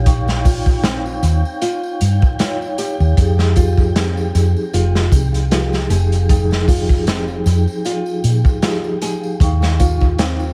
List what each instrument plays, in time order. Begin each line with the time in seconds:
Already playing: fingered electric bass A#1, vibraphone D#4 C#5 F5 G5, nylon-string guitar G4, synth texture G5
0.06 vibraphone D#4 F5 G5 C#6, kick, closed hi-hat, tambourine
0.27 snare, tambourine
0.45 nylon-string guitar F4, kick, open hi-hat, tambourine
0.66 kick, tambourine
0.84 nylon-string guitar C4, snare, closed hi-hat, tambourine
1.06 tambourine
1.23 fingered electric bass D#2, closed hi-hat, tambourine
1.45 tambourine
1.62 nylon-string guitar F4, closed hi-hat, tambourine
1.83 tambourine
2.01 fingered electric bass G2, closed hi-hat, tambourine
2.22 kick, tambourine
2.39 vibraphone D#4 C#5 F5 G5, nylon-string guitar F4, snare, closed hi-hat, tambourine
2.62 tambourine
2.78 nylon-string guitar G4, closed hi-hat, tambourine
3.00 fingered electric bass D#2, tambourine
3.17 fingered electric bass F2, vibraphone F3 D#4 G4 G#4, kick, closed hi-hat, tambourine
3.39 snare, tambourine
3.56 nylon-string guitar F4, kick, closed hi-hat, tambourine
3.77 kick, tambourine
3.95 nylon-string guitar C4, snare, closed hi-hat, tambourine
4.17 tambourine
4.35 fingered electric bass F2, closed hi-hat, tambourine
4.56 tambourine
4.73 fingered electric bass F1, nylon-string guitar F4, closed hi-hat, tambourine
4.95 snare, tambourine
5.12 fingered electric bass C2, kick, closed hi-hat, tambourine
5.34 closed hi-hat, tambourine
5.51 vibraphone F3 D#4 G4 G#4, nylon-string guitar F4, snare, closed hi-hat, tambourine
5.73 snare, tambourine
5.90 fingered electric bass F1, nylon-string guitar G#4, closed hi-hat, tambourine
6.12 closed hi-hat, tambourine
6.29 vibraphone F3 D#4 G#4 G5, kick, closed hi-hat, tambourine
6.51 snare, tambourine
6.68 nylon-string guitar F4, kick, open hi-hat, tambourine
6.89 kick, tambourine
7.07 nylon-string guitar C4, snare, closed hi-hat, tambourine
7.28 tambourine
7.46 fingered electric bass F2, closed hi-hat, tambourine
7.67 tambourine
7.85 nylon-string guitar F4, closed hi-hat, tambourine
8.06 tambourine
8.24 fingered electric bass A#2, closed hi-hat, tambourine
8.45 kick, tambourine
8.62 vibraphone F3 D#4 G4 G#4, nylon-string guitar F4, snare, closed hi-hat, tambourine
8.84 tambourine
9.01 nylon-string guitar G#4, closed hi-hat, tambourine
9.23 tambourine
9.40 fingered electric bass D#2, vibraphone D#4 F5 G5 C#6, kick, closed hi-hat, tambourine
9.62 snare, tambourine
9.80 nylon-string guitar F4, kick, closed hi-hat, tambourine
10.00 kick, tambourine
10.19 nylon-string guitar C4, snare, closed hi-hat, tambourine
10.40 tambourine